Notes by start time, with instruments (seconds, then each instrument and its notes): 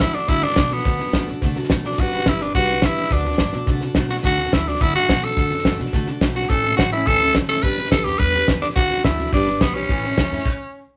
0.00 steel-string acoustic guitar A3 D4 F#4 A4, tenor saxophone E4, kick
0.14 tenor saxophone D4, steel-string acoustic guitar D4 F#4 A4, snare
0.28 upright bass G2, steel-string acoustic guitar D3 A3 D4 F#4 A4, tenor saxophone E4, kick, snare
0.42 tenor saxophone D4, steel-string acoustic guitar D4 F#4 A4, snare
0.50 snare
0.56 upright bass B2, steel-string acoustic guitar A3 D4 F#4 A4, kick, snare, hi-hat pedal
0.70 tenor saxophone B3, steel-string acoustic guitar D4 F#4 A4, snare
0.78 snare
0.85 steel-string acoustic guitar D3 A3 D4 F#4 A4, kick, snare
0.99 steel-string acoustic guitar D4 F#4 A4, snare
1.07 snare
1.13 upright bass G2, steel-string acoustic guitar A3 D4 F#4 A4, kick, snare, hi-hat pedal
1.27 upright bass B2, steel-string acoustic guitar D4 F#4 A4, snare
1.42 upright bass C3, steel-string acoustic guitar D3 A3 D4 F#4 A4, kick, snare
1.56 steel-string acoustic guitar F#4 A4, snare
1.60 steel-string acoustic guitar D4, snare
1.70 upright bass B2, steel-string acoustic guitar A3 D4 F#4, kick, snare, hi-hat pedal
1.74 steel-string acoustic guitar A4
1.84 tenor saxophone D4, steel-string acoustic guitar D4 F#4 A4, snare
1.92 snare
1.98 upright bass G1, steel-string acoustic guitar G3 D4 G4 B4, tenor saxophone F#4, kick, snare
2.12 steel-string acoustic guitar G4 B4, snare
2.17 steel-string acoustic guitar D4, snare
2.26 upright bass G1, steel-string acoustic guitar G3 D4 G4 B4, tenor saxophone E4, kick, snare, hi-hat pedal
2.41 tenor saxophone D4, steel-string acoustic guitar D4 G4 B4, snare
2.48 snare
2.54 upright bass C2, steel-string acoustic guitar G3 D4 G4 B4, tenor saxophone F#4, kick, snare
2.69 steel-string acoustic guitar D4 G4 B4, snare
2.82 steel-string acoustic guitar G3 D4 G4, tenor saxophone E4, kick, snare, hi-hat pedal
2.86 steel-string acoustic guitar B4
2.96 steel-string acoustic guitar D4 G4 B4, snare
3.04 snare
3.10 upright bass D2, steel-string acoustic guitar D3 A3 D4 F#4 A4, tenor saxophone D4, kick, snare
3.25 steel-string acoustic guitar D4 F#4 A4, snare
3.31 snare
3.38 upright bass G2, steel-string acoustic guitar A3 D4 F#4, kick, snare, hi-hat pedal
3.43 steel-string acoustic guitar A4
3.53 upright bass B2, steel-string acoustic guitar D4 F#4 A4, snare
3.66 upright bass C3, steel-string acoustic guitar D3 A3 D4 F#4 A4, kick, snare
3.81 steel-string acoustic guitar F#4 A4, snare
3.85 steel-string acoustic guitar D4
3.95 upright bass B2, steel-string acoustic guitar A3 D4 F#4, kick, snare, hi-hat pedal
3.99 steel-string acoustic guitar A4
4.09 steel-string acoustic guitar D4 F#4 A4, tenor saxophone F#4, snare
4.16 snare
4.22 upright bass D2, steel-string acoustic guitar D3 A3 D4 F#4 A4, tenor saxophone F#4, kick, snare
4.37 steel-string acoustic guitar D4 F#4 A4, snare
4.46 snare
4.51 upright bass D2, steel-string acoustic guitar A3 D4 F#4 A4, tenor saxophone E4, kick, snare, hi-hat pedal
4.66 tenor saxophone D4, steel-string acoustic guitar D4 F#4 A4, snare
4.75 snare
4.80 upright bass G2, steel-string acoustic guitar D3 A3 D4 F#4 A4, tenor saxophone E4, kick, snare
4.94 steel-string acoustic guitar D4 F#4 A4, tenor saxophone F#4, snare
5.08 upright bass B2, steel-string acoustic guitar A3 D4 F#4 A4, kick, snare, hi-hat pedal
5.23 steel-string acoustic guitar D4 F#4 A4, tenor saxophone A4, snare
5.30 snare
5.36 upright bass F#2, steel-string acoustic guitar D3 A3 D4 F#4 A4, kick, snare
5.50 steel-string acoustic guitar D4 F#4 A4, snare
5.58 snare
5.65 upright bass G2, steel-string acoustic guitar A3 D4 F#4 A4, kick, snare, hi-hat pedal
5.79 upright bass B2, steel-string acoustic guitar D4 F#4 A4, snare
5.86 snare
5.93 upright bass C3, steel-string acoustic guitar D3 A3 D4 F#4 A4, kick, snare
6.06 steel-string acoustic guitar F#4 A4, snare
6.10 steel-string acoustic guitar D4
6.21 upright bass B1, steel-string acoustic guitar A3 D4 F#4 A4, kick, snare, hi-hat pedal
6.34 steel-string acoustic guitar D4 F#4 A4, tenor saxophone F#4, snare
6.42 snare
6.49 upright bass A1, steel-string acoustic guitar A2 E3 A3 C#4 E4 A4, tenor saxophone A4, kick, snare
6.64 steel-string acoustic guitar A3 C#4 E4 A4, snare
6.72 snare
6.77 upright bass A1, steel-string acoustic guitar A3 C#4 E4 A4, tenor saxophone F#4, kick, snare, hi-hat pedal
6.92 steel-string acoustic guitar A3 C#4 E4 A4, tenor saxophone E4, snare
7.06 upright bass D2, steel-string acoustic guitar A2 E3 A3 C#4 E4 A4, tenor saxophone A4, kick, snare
7.20 steel-string acoustic guitar A3 C#4 E4 A4, snare
7.28 snare
7.35 upright bass F#1, steel-string acoustic guitar A3 C#4 E4 A4, kick, snare, hi-hat pedal
7.49 steel-string acoustic guitar A3 C#4 E4 A4, tenor saxophone A4, snare
7.56 snare
7.62 upright bass G1, steel-string acoustic guitar G3 D4 G4 B4, tenor saxophone B4, kick, snare
7.77 steel-string acoustic guitar D4 G4 B4, snare
7.85 snare
7.91 upright bass C2, steel-string acoustic guitar G3 D4 G4 B4, tenor saxophone A4, kick, snare, hi-hat pedal
8.05 upright bass E2, steel-string acoustic guitar D4 G4 B4, tenor saxophone G4, snare
8.18 upright bass E2, steel-string acoustic guitar G3 D4 G4 B4, tenor saxophone B4, kick, snare
8.33 steel-string acoustic guitar D4 G4 B4, snare
8.46 upright bass E2, steel-string acoustic guitar G3 D4 G4 B4, kick, snare, hi-hat pedal
8.61 tenor saxophone D4, steel-string acoustic guitar D4 G4 B4, snare
8.70 snare
8.76 upright bass D2, steel-string acoustic guitar D3 A3 D4 F#4 A4, tenor saxophone F#4, kick, snare
8.89 steel-string acoustic guitar D4 F#4 A4, snare
8.97 snare
9.04 upright bass D2, steel-string acoustic guitar A3 D4 F#4 A4, tenor saxophone E4, kick, snare, hi-hat pedal
9.17 steel-string acoustic guitar D4 F#4 A4, snare
9.26 snare
9.32 upright bass G1, steel-string acoustic guitar G3 D4 G4 B4, tenor saxophone D4, kick, snare
9.46 steel-string acoustic guitar G4 B4, snare
9.50 steel-string acoustic guitar D4
9.60 upright bass B1, steel-string acoustic guitar G3 D4 G4 B4, tenor saxophone B3, kick, snare, hi-hat pedal
9.74 tenor saxophone C#4, steel-string acoustic guitar D4 G4 B4, snare
9.82 snare
9.89 upright bass A1, steel-string acoustic guitar A2 E3 A3 C#4 E4 A4, kick, snare
10.03 steel-string acoustic guitar A3 C#4 E4 A4, snare
10.11 snare
10.17 upright bass D2, steel-string acoustic guitar A3 C#4 E4 A4, kick, snare, hi-hat pedal
10.31 upright bass F#2, steel-string acoustic guitar A3 C#4 E4 A4, snare
10.39 snare
10.45 kick, crash